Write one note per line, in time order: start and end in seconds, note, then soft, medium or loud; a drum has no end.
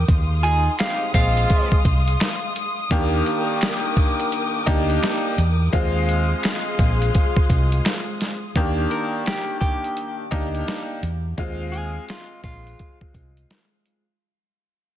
0.08 0.67 D#2 loud
0.08 2.88 G#3 medium
0.08 2.88 F5 medium
0.08 2.88 C6 medium
0.08 8.52 D#6 medium
0.08 kick loud
0.08 closed hi-hat medium
0.43 0.72 D#4 medium
0.43 0.72 F4 medium
0.43 0.72 G#4 loud
0.43 0.75 G#5 medium
0.43 closed hi-hat medium
0.79 1.08 C4 medium
0.79 1.08 D#4 medium
0.79 1.08 G4 medium
0.79 1.11 F5 medium
0.79 finger snap medium
0.79 snare loud
0.79 closed hi-hat loud
1.14 1.44 A#1 loud
1.14 1.81 G#3 loud
1.14 1.81 C4 medium
1.14 1.81 F4 loud
1.14 1.69 F5 medium
1.14 kick medium
1.14 closed hi-hat medium
1.37 closed hi-hat medium
1.50 kick loud
1.50 closed hi-hat loud
1.72 kick loud
1.85 2.14 C2 medium
1.85 kick loud
1.85 closed hi-hat medium
2.08 closed hi-hat medium
2.20 finger snap medium
2.20 snare loud
2.20 closed hi-hat loud
2.56 closed hi-hat medium
2.91 3.20 D#2 loud
2.91 4.57 D#3 loud
2.91 4.57 A#3 loud
2.91 4.57 D4 medium
2.91 4.57 G4 loud
2.91 5.70 A#4 medium
2.91 5.70 G5 medium
2.91 5.70 D6 medium
2.91 kick loud
2.91 closed hi-hat loud
3.26 closed hi-hat medium
3.61 finger snap medium
3.61 snare loud
3.61 closed hi-hat loud
3.97 kick medium
3.97 closed hi-hat medium
4.20 closed hi-hat medium
4.32 closed hi-hat loud
4.66 4.97 D2 loud
4.66 5.33 A#3 medium
4.66 5.34 D4 medium
4.66 5.33 D#4 loud
4.66 5.34 G4 loud
4.66 kick loud
4.66 closed hi-hat medium
4.90 closed hi-hat medium
5.03 finger snap medium
5.03 snare loud
5.03 closed hi-hat loud
5.38 5.67 E2 loud
5.38 closed hi-hat medium
5.73 6.32 D#2 loud
5.73 8.36 G#3 loud
5.73 8.36 C4 medium
5.73 8.36 F4 loud
5.73 8.53 G#4 medium
5.73 8.53 F5 medium
5.73 8.53 C6 medium
5.73 kick loud
5.73 closed hi-hat loud
6.09 closed hi-hat medium
6.43 finger snap medium
6.43 snare loud
6.43 closed hi-hat loud
6.79 7.09 A#1 loud
6.79 kick medium
6.79 closed hi-hat medium
7.02 closed hi-hat soft
7.15 kick loud
7.15 closed hi-hat loud
7.37 kick loud
7.50 7.79 C2 medium
7.50 kick loud
7.50 closed hi-hat medium
7.72 closed hi-hat medium
7.85 finger snap medium
7.85 snare loud
7.85 closed hi-hat loud
8.21 snare soft
8.21 closed hi-hat medium
8.56 8.85 D#2 medium
8.56 10.22 D#3 loud
8.56 10.22 A#3 medium
8.56 10.22 D4 medium
8.56 10.22 G4 loud
8.56 kick loud
8.56 closed hi-hat medium
8.91 9.23 A#4 medium
8.91 closed hi-hat medium
9.26 9.58 G4 medium
9.26 snare loud
9.26 closed hi-hat loud
9.61 10.15 G4 medium
9.61 kick medium
9.61 closed hi-hat medium
9.84 closed hi-hat soft
9.97 closed hi-hat loud
10.31 10.62 D2 medium
10.31 10.98 A#3 medium
10.31 10.98 D4 medium
10.31 10.98 D#4 loud
10.31 10.98 G4 loud
10.31 kick loud
10.31 closed hi-hat medium
10.55 closed hi-hat medium
10.68 snare loud
10.68 closed hi-hat medium
11.03 11.32 E2 loud
11.03 closed hi-hat medium
11.38 11.97 D#2 loud
11.38 14.01 G#3 loud
11.38 14.01 C4 medium
11.38 14.01 F4 loud
11.38 kick loud
11.38 closed hi-hat medium
11.72 12.04 G#4 medium
11.72 closed hi-hat medium
12.09 12.41 F4 medium
12.09 snare loud
12.09 closed hi-hat loud
12.44 12.73 A#1 medium
12.44 12.98 F4 medium
12.44 kick medium
12.44 closed hi-hat medium
12.67 closed hi-hat soft
12.79 kick loud
12.79 closed hi-hat medium
13.01 kick loud
13.14 13.44 C2 medium
13.14 kick medium
13.14 closed hi-hat medium
13.37 closed hi-hat medium
13.50 snare loud
13.50 closed hi-hat medium
13.86 closed hi-hat medium